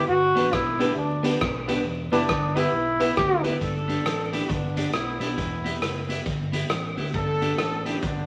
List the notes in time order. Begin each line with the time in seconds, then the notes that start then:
0.08 G1 F#4
0.35 A1 B3 D4 G4 B4, closed hi-hat
0.53 B1 E4 G4 B4, kick, cross-stick
0.79 B3 D4 G4 B4, closed hi-hat
0.96 D2 D4 G4 B4
1.23 B3 D4 G4 B4, closed hi-hat
1.41 B1, kick, cross-stick
1.67 B3 D4 G4 B4, closed hi-hat
1.84 E1
2.11 F#1 B3 D4 E4 G4 B4, closed hi-hat
2.29 G1, kick, cross-stick
2.55 B3 E4 G4 B4, closed hi-hat
2.73 B1
3.00 B3 E4 G4 B4, closed hi-hat
3.17 D2 G4, muted clean electric guitar stroke, kick, cross-stick
3.43 B3 E4 G4 B4, closed hi-hat
3.61 G1 D4 A4, kick, closed hi-hat
3.88 B3 D4 G4, closed hi-hat
4.05 A1, muted clean electric guitar stroke, cross-stick, closed hi-hat
4.32 B3 D4 E4 G4, closed hi-hat
4.49 G1 B3 D4, kick, closed hi-hat
4.76 B3 D4 G4, closed hi-hat
4.93 B1 B3 E4, cross-stick, closed hi-hat
5.20 B1 B3 D4 E4 G4, closed hi-hat
5.38 E1, kick, closed hi-hat
5.64 B3 E4 G4, closed hi-hat
5.81 F#1, muted clean electric guitar stroke, cross-stick, closed hi-hat
6.09 B3 E4 G4, closed hi-hat
6.26 G1, kick, closed hi-hat
6.52 B3 E4 G4, closed hi-hat
6.69 A1, cross-stick, closed hi-hat
6.97 D2 B3 E4 G4, open hi-hat
7.14 G1 D4 A4, kick, closed hi-hat
7.41 B3 D4 G4, closed hi-hat
7.58 A1, muted clean electric guitar stroke, cross-stick, closed hi-hat
7.85 B3 D4 E4 G4, closed hi-hat
8.02 G1 B3 D4, kick, closed hi-hat